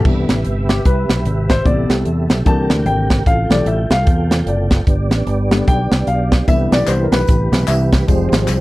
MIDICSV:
0, 0, Header, 1, 5, 480
1, 0, Start_track
1, 0, Key_signature, 0, "major"
1, 0, Tempo, 401606
1, 57, Time_signature, 4, 2, 24, 8
1, 10285, End_track
2, 0, Start_track
2, 0, Title_t, "Tonewheel organ"
2, 0, Program_c, 0, 16
2, 58, Note_on_c, 0, 76, 72
2, 60, Note_on_c, 0, 71, 58
2, 63, Note_on_c, 0, 48, 65
2, 63, Note_on_c, 0, 67, 58
2, 1959, Note_off_c, 0, 71, 0
2, 1990, Note_on_c, 0, 69, 60
2, 2909, Note_off_c, 0, 76, 0
2, 2935, Note_off_c, 0, 69, 0
2, 2944, Note_on_c, 0, 79, 69
2, 2946, Note_on_c, 0, 70, 56
2, 3863, Note_off_c, 0, 67, 0
2, 3893, Note_off_c, 0, 70, 0
2, 3905, Note_on_c, 0, 69, 58
2, 3906, Note_on_c, 0, 65, 62
2, 5775, Note_off_c, 0, 48, 0
2, 5795, Note_off_c, 0, 79, 0
2, 5805, Note_off_c, 0, 65, 0
2, 5805, Note_off_c, 0, 69, 0
2, 5815, Note_on_c, 0, 74, 69
2, 5818, Note_on_c, 0, 59, 68
2, 5818, Note_on_c, 0, 67, 59
2, 5819, Note_on_c, 0, 62, 61
2, 7720, Note_off_c, 0, 74, 0
2, 7721, Note_off_c, 0, 59, 0
2, 7722, Note_off_c, 0, 62, 0
2, 7739, Note_on_c, 0, 71, 72
2, 7740, Note_on_c, 0, 48, 57
2, 7741, Note_on_c, 0, 52, 65
2, 9640, Note_off_c, 0, 48, 0
2, 9640, Note_off_c, 0, 71, 0
2, 9641, Note_off_c, 0, 52, 0
2, 9666, Note_on_c, 0, 72, 80
2, 9668, Note_on_c, 0, 60, 63
2, 9670, Note_on_c, 0, 53, 71
2, 10285, Note_off_c, 0, 53, 0
2, 10285, Note_off_c, 0, 60, 0
2, 10285, Note_off_c, 0, 67, 0
2, 10285, Note_off_c, 0, 72, 0
2, 10285, End_track
3, 0, Start_track
3, 0, Title_t, "Grand piano"
3, 0, Program_c, 1, 0
3, 56, Note_on_c, 1, 50, 53
3, 63, Note_on_c, 1, 52, 45
3, 72, Note_on_c, 1, 59, 56
3, 404, Note_off_c, 1, 50, 0
3, 407, Note_off_c, 1, 52, 0
3, 412, Note_off_c, 1, 59, 0
3, 826, Note_on_c, 1, 67, 77
3, 1023, Note_off_c, 1, 67, 0
3, 1026, Note_on_c, 1, 71, 85
3, 1799, Note_on_c, 1, 72, 97
3, 1814, Note_off_c, 1, 71, 0
3, 1971, Note_on_c, 1, 48, 51
3, 1978, Note_on_c, 1, 55, 50
3, 1983, Note_on_c, 1, 74, 101
3, 1986, Note_on_c, 1, 59, 59
3, 1989, Note_off_c, 1, 72, 0
3, 2250, Note_off_c, 1, 74, 0
3, 2705, Note_off_c, 1, 48, 0
3, 2709, Note_off_c, 1, 55, 0
3, 2713, Note_off_c, 1, 59, 0
3, 2930, Note_on_c, 1, 50, 56
3, 2938, Note_on_c, 1, 52, 50
3, 2947, Note_on_c, 1, 58, 59
3, 2949, Note_on_c, 1, 81, 103
3, 3421, Note_on_c, 1, 79, 91
3, 3438, Note_off_c, 1, 81, 0
3, 3847, Note_off_c, 1, 50, 0
3, 3851, Note_off_c, 1, 52, 0
3, 3855, Note_off_c, 1, 58, 0
3, 3866, Note_off_c, 1, 79, 0
3, 3909, Note_on_c, 1, 77, 96
3, 4176, Note_on_c, 1, 52, 53
3, 4184, Note_on_c, 1, 55, 50
3, 4189, Note_on_c, 1, 57, 63
3, 4198, Note_on_c, 1, 74, 94
3, 4202, Note_off_c, 1, 77, 0
3, 4389, Note_off_c, 1, 74, 0
3, 4391, Note_on_c, 1, 76, 76
3, 4473, Note_off_c, 1, 52, 0
3, 4477, Note_off_c, 1, 55, 0
3, 4480, Note_off_c, 1, 57, 0
3, 4683, Note_off_c, 1, 76, 0
3, 4687, Note_on_c, 1, 77, 92
3, 5357, Note_on_c, 1, 74, 68
3, 5369, Note_off_c, 1, 77, 0
3, 6071, Note_off_c, 1, 74, 0
3, 6580, Note_on_c, 1, 50, 53
3, 6586, Note_on_c, 1, 55, 47
3, 6595, Note_on_c, 1, 59, 57
3, 6786, Note_on_c, 1, 79, 99
3, 6876, Note_off_c, 1, 50, 0
3, 6880, Note_off_c, 1, 55, 0
3, 6884, Note_off_c, 1, 59, 0
3, 7262, Note_on_c, 1, 77, 81
3, 7278, Note_off_c, 1, 79, 0
3, 7708, Note_off_c, 1, 77, 0
3, 7737, Note_on_c, 1, 50, 50
3, 7744, Note_on_c, 1, 52, 50
3, 7750, Note_on_c, 1, 59, 58
3, 7751, Note_on_c, 1, 76, 98
3, 8034, Note_on_c, 1, 74, 100
3, 8044, Note_off_c, 1, 76, 0
3, 8224, Note_on_c, 1, 72, 78
3, 8229, Note_off_c, 1, 74, 0
3, 8412, Note_on_c, 1, 70, 60
3, 8417, Note_off_c, 1, 72, 0
3, 8511, Note_on_c, 1, 71, 93
3, 8512, Note_off_c, 1, 70, 0
3, 9174, Note_on_c, 1, 76, 77
3, 9201, Note_off_c, 1, 71, 0
3, 9610, Note_off_c, 1, 50, 0
3, 9614, Note_off_c, 1, 52, 0
3, 9617, Note_off_c, 1, 59, 0
3, 9645, Note_on_c, 1, 53, 55
3, 9651, Note_on_c, 1, 55, 50
3, 9659, Note_on_c, 1, 56, 59
3, 9898, Note_off_c, 1, 76, 0
3, 10285, Note_off_c, 1, 53, 0
3, 10285, Note_off_c, 1, 55, 0
3, 10285, Note_off_c, 1, 56, 0
3, 10285, End_track
4, 0, Start_track
4, 0, Title_t, "Fingered electric bass"
4, 0, Program_c, 2, 33
4, 59, Note_on_c, 2, 36, 93
4, 304, Note_off_c, 2, 36, 0
4, 348, Note_on_c, 2, 33, 76
4, 509, Note_off_c, 2, 33, 0
4, 536, Note_on_c, 2, 31, 73
4, 944, Note_off_c, 2, 31, 0
4, 1019, Note_on_c, 2, 36, 84
4, 1264, Note_off_c, 2, 36, 0
4, 1304, Note_on_c, 2, 35, 79
4, 1467, Note_off_c, 2, 35, 0
4, 1495, Note_on_c, 2, 32, 90
4, 1904, Note_off_c, 2, 32, 0
4, 1976, Note_on_c, 2, 33, 88
4, 2222, Note_off_c, 2, 33, 0
4, 2265, Note_on_c, 2, 36, 78
4, 2428, Note_off_c, 2, 36, 0
4, 2457, Note_on_c, 2, 40, 82
4, 2703, Note_off_c, 2, 40, 0
4, 2744, Note_on_c, 2, 35, 71
4, 2907, Note_off_c, 2, 35, 0
4, 2939, Note_on_c, 2, 36, 89
4, 3185, Note_off_c, 2, 36, 0
4, 3224, Note_on_c, 2, 38, 91
4, 3388, Note_off_c, 2, 38, 0
4, 3412, Note_on_c, 2, 32, 86
4, 3823, Note_off_c, 2, 32, 0
4, 3900, Note_on_c, 2, 33, 86
4, 4146, Note_off_c, 2, 33, 0
4, 4181, Note_on_c, 2, 35, 77
4, 4347, Note_off_c, 2, 35, 0
4, 4373, Note_on_c, 2, 33, 81
4, 4622, Note_off_c, 2, 33, 0
4, 4665, Note_on_c, 2, 36, 92
4, 4829, Note_off_c, 2, 36, 0
4, 4864, Note_on_c, 2, 40, 82
4, 5271, Note_off_c, 2, 40, 0
4, 5335, Note_on_c, 2, 30, 88
4, 5746, Note_off_c, 2, 30, 0
4, 5820, Note_on_c, 2, 31, 93
4, 6101, Note_off_c, 2, 31, 0
4, 6101, Note_on_c, 2, 33, 85
4, 6267, Note_off_c, 2, 33, 0
4, 6292, Note_on_c, 2, 31, 85
4, 6704, Note_off_c, 2, 31, 0
4, 6784, Note_on_c, 2, 35, 73
4, 7029, Note_off_c, 2, 35, 0
4, 7069, Note_on_c, 2, 36, 88
4, 7232, Note_off_c, 2, 36, 0
4, 7254, Note_on_c, 2, 35, 85
4, 7666, Note_off_c, 2, 35, 0
4, 7740, Note_on_c, 2, 36, 85
4, 7987, Note_off_c, 2, 36, 0
4, 8032, Note_on_c, 2, 35, 83
4, 8193, Note_off_c, 2, 35, 0
4, 8220, Note_on_c, 2, 36, 81
4, 8467, Note_off_c, 2, 36, 0
4, 8506, Note_on_c, 2, 35, 81
4, 8670, Note_off_c, 2, 35, 0
4, 8708, Note_on_c, 2, 33, 80
4, 8951, Note_off_c, 2, 33, 0
4, 8988, Note_on_c, 2, 35, 93
4, 9151, Note_off_c, 2, 35, 0
4, 9180, Note_on_c, 2, 36, 90
4, 9588, Note_off_c, 2, 36, 0
4, 9662, Note_on_c, 2, 29, 95
4, 9907, Note_off_c, 2, 29, 0
4, 9946, Note_on_c, 2, 32, 82
4, 10109, Note_off_c, 2, 32, 0
4, 10141, Note_on_c, 2, 36, 81
4, 10285, Note_off_c, 2, 36, 0
4, 10285, End_track
5, 0, Start_track
5, 0, Title_t, "Drums"
5, 61, Note_on_c, 9, 36, 112
5, 62, Note_on_c, 9, 49, 79
5, 180, Note_off_c, 9, 36, 0
5, 182, Note_off_c, 9, 49, 0
5, 344, Note_on_c, 9, 42, 63
5, 347, Note_on_c, 9, 38, 104
5, 463, Note_off_c, 9, 42, 0
5, 466, Note_off_c, 9, 38, 0
5, 532, Note_on_c, 9, 42, 79
5, 651, Note_off_c, 9, 42, 0
5, 825, Note_on_c, 9, 42, 59
5, 827, Note_on_c, 9, 38, 101
5, 944, Note_off_c, 9, 42, 0
5, 947, Note_off_c, 9, 38, 0
5, 1018, Note_on_c, 9, 42, 73
5, 1022, Note_on_c, 9, 36, 106
5, 1137, Note_off_c, 9, 42, 0
5, 1141, Note_off_c, 9, 36, 0
5, 1308, Note_on_c, 9, 38, 95
5, 1314, Note_on_c, 9, 42, 54
5, 1427, Note_off_c, 9, 38, 0
5, 1433, Note_off_c, 9, 42, 0
5, 1499, Note_on_c, 9, 42, 82
5, 1618, Note_off_c, 9, 42, 0
5, 1788, Note_on_c, 9, 36, 82
5, 1788, Note_on_c, 9, 42, 70
5, 1789, Note_on_c, 9, 38, 105
5, 1907, Note_off_c, 9, 36, 0
5, 1907, Note_off_c, 9, 42, 0
5, 1909, Note_off_c, 9, 38, 0
5, 1979, Note_on_c, 9, 36, 106
5, 1979, Note_on_c, 9, 42, 63
5, 2098, Note_off_c, 9, 36, 0
5, 2099, Note_off_c, 9, 42, 0
5, 2267, Note_on_c, 9, 42, 72
5, 2270, Note_on_c, 9, 38, 95
5, 2386, Note_off_c, 9, 42, 0
5, 2389, Note_off_c, 9, 38, 0
5, 2455, Note_on_c, 9, 42, 75
5, 2574, Note_off_c, 9, 42, 0
5, 2745, Note_on_c, 9, 42, 58
5, 2748, Note_on_c, 9, 38, 103
5, 2865, Note_off_c, 9, 42, 0
5, 2867, Note_off_c, 9, 38, 0
5, 2939, Note_on_c, 9, 42, 79
5, 2942, Note_on_c, 9, 36, 102
5, 3058, Note_off_c, 9, 42, 0
5, 3062, Note_off_c, 9, 36, 0
5, 3226, Note_on_c, 9, 38, 102
5, 3232, Note_on_c, 9, 42, 57
5, 3345, Note_off_c, 9, 38, 0
5, 3352, Note_off_c, 9, 42, 0
5, 3416, Note_on_c, 9, 42, 76
5, 3536, Note_off_c, 9, 42, 0
5, 3707, Note_on_c, 9, 42, 72
5, 3708, Note_on_c, 9, 36, 76
5, 3709, Note_on_c, 9, 38, 103
5, 3827, Note_off_c, 9, 42, 0
5, 3828, Note_off_c, 9, 36, 0
5, 3829, Note_off_c, 9, 38, 0
5, 3899, Note_on_c, 9, 36, 108
5, 3901, Note_on_c, 9, 42, 72
5, 4019, Note_off_c, 9, 36, 0
5, 4021, Note_off_c, 9, 42, 0
5, 4189, Note_on_c, 9, 42, 71
5, 4192, Note_on_c, 9, 38, 109
5, 4309, Note_off_c, 9, 42, 0
5, 4312, Note_off_c, 9, 38, 0
5, 4377, Note_on_c, 9, 42, 83
5, 4496, Note_off_c, 9, 42, 0
5, 4667, Note_on_c, 9, 42, 59
5, 4670, Note_on_c, 9, 38, 109
5, 4787, Note_off_c, 9, 42, 0
5, 4789, Note_off_c, 9, 38, 0
5, 4860, Note_on_c, 9, 42, 72
5, 4864, Note_on_c, 9, 36, 110
5, 4979, Note_off_c, 9, 42, 0
5, 4984, Note_off_c, 9, 36, 0
5, 5153, Note_on_c, 9, 38, 102
5, 5159, Note_on_c, 9, 42, 58
5, 5273, Note_off_c, 9, 38, 0
5, 5279, Note_off_c, 9, 42, 0
5, 5341, Note_on_c, 9, 42, 82
5, 5460, Note_off_c, 9, 42, 0
5, 5626, Note_on_c, 9, 42, 70
5, 5627, Note_on_c, 9, 38, 102
5, 5629, Note_on_c, 9, 36, 76
5, 5745, Note_off_c, 9, 42, 0
5, 5747, Note_off_c, 9, 38, 0
5, 5748, Note_off_c, 9, 36, 0
5, 5819, Note_on_c, 9, 42, 70
5, 5820, Note_on_c, 9, 36, 113
5, 5939, Note_off_c, 9, 42, 0
5, 5940, Note_off_c, 9, 36, 0
5, 6107, Note_on_c, 9, 42, 71
5, 6110, Note_on_c, 9, 38, 97
5, 6227, Note_off_c, 9, 42, 0
5, 6230, Note_off_c, 9, 38, 0
5, 6296, Note_on_c, 9, 42, 77
5, 6415, Note_off_c, 9, 42, 0
5, 6588, Note_on_c, 9, 42, 58
5, 6590, Note_on_c, 9, 38, 100
5, 6707, Note_off_c, 9, 42, 0
5, 6710, Note_off_c, 9, 38, 0
5, 6782, Note_on_c, 9, 42, 75
5, 6785, Note_on_c, 9, 36, 111
5, 6902, Note_off_c, 9, 42, 0
5, 6905, Note_off_c, 9, 36, 0
5, 7070, Note_on_c, 9, 38, 105
5, 7076, Note_on_c, 9, 42, 55
5, 7190, Note_off_c, 9, 38, 0
5, 7196, Note_off_c, 9, 42, 0
5, 7257, Note_on_c, 9, 42, 88
5, 7376, Note_off_c, 9, 42, 0
5, 7552, Note_on_c, 9, 36, 80
5, 7552, Note_on_c, 9, 42, 76
5, 7553, Note_on_c, 9, 38, 108
5, 7671, Note_off_c, 9, 42, 0
5, 7672, Note_off_c, 9, 36, 0
5, 7673, Note_off_c, 9, 38, 0
5, 7743, Note_on_c, 9, 36, 112
5, 7743, Note_on_c, 9, 54, 69
5, 7744, Note_on_c, 9, 42, 68
5, 7863, Note_off_c, 9, 36, 0
5, 7863, Note_off_c, 9, 54, 0
5, 7864, Note_off_c, 9, 42, 0
5, 8035, Note_on_c, 9, 42, 67
5, 8035, Note_on_c, 9, 54, 51
5, 8038, Note_on_c, 9, 38, 113
5, 8154, Note_off_c, 9, 42, 0
5, 8154, Note_off_c, 9, 54, 0
5, 8157, Note_off_c, 9, 38, 0
5, 8213, Note_on_c, 9, 39, 94
5, 8213, Note_on_c, 9, 54, 100
5, 8222, Note_on_c, 9, 42, 82
5, 8333, Note_off_c, 9, 39, 0
5, 8333, Note_off_c, 9, 54, 0
5, 8341, Note_off_c, 9, 42, 0
5, 8510, Note_on_c, 9, 54, 61
5, 8514, Note_on_c, 9, 42, 59
5, 8516, Note_on_c, 9, 38, 108
5, 8629, Note_off_c, 9, 54, 0
5, 8633, Note_off_c, 9, 42, 0
5, 8636, Note_off_c, 9, 38, 0
5, 8693, Note_on_c, 9, 54, 71
5, 8709, Note_on_c, 9, 36, 111
5, 8709, Note_on_c, 9, 42, 72
5, 8812, Note_off_c, 9, 54, 0
5, 8828, Note_off_c, 9, 36, 0
5, 8829, Note_off_c, 9, 42, 0
5, 8995, Note_on_c, 9, 54, 51
5, 8999, Note_on_c, 9, 38, 100
5, 9005, Note_on_c, 9, 42, 60
5, 9114, Note_off_c, 9, 54, 0
5, 9118, Note_off_c, 9, 38, 0
5, 9124, Note_off_c, 9, 42, 0
5, 9173, Note_on_c, 9, 39, 99
5, 9173, Note_on_c, 9, 54, 94
5, 9186, Note_on_c, 9, 42, 79
5, 9293, Note_off_c, 9, 39, 0
5, 9293, Note_off_c, 9, 54, 0
5, 9305, Note_off_c, 9, 42, 0
5, 9471, Note_on_c, 9, 54, 52
5, 9473, Note_on_c, 9, 36, 78
5, 9474, Note_on_c, 9, 42, 69
5, 9476, Note_on_c, 9, 38, 114
5, 9590, Note_off_c, 9, 54, 0
5, 9592, Note_off_c, 9, 36, 0
5, 9594, Note_off_c, 9, 42, 0
5, 9595, Note_off_c, 9, 38, 0
5, 9659, Note_on_c, 9, 54, 65
5, 9663, Note_on_c, 9, 36, 109
5, 9664, Note_on_c, 9, 42, 71
5, 9778, Note_off_c, 9, 54, 0
5, 9783, Note_off_c, 9, 36, 0
5, 9784, Note_off_c, 9, 42, 0
5, 9946, Note_on_c, 9, 54, 49
5, 9953, Note_on_c, 9, 42, 75
5, 9956, Note_on_c, 9, 38, 115
5, 10066, Note_off_c, 9, 54, 0
5, 10072, Note_off_c, 9, 42, 0
5, 10075, Note_off_c, 9, 38, 0
5, 10131, Note_on_c, 9, 39, 96
5, 10131, Note_on_c, 9, 54, 97
5, 10138, Note_on_c, 9, 42, 84
5, 10250, Note_off_c, 9, 39, 0
5, 10250, Note_off_c, 9, 54, 0
5, 10257, Note_off_c, 9, 42, 0
5, 10285, End_track
0, 0, End_of_file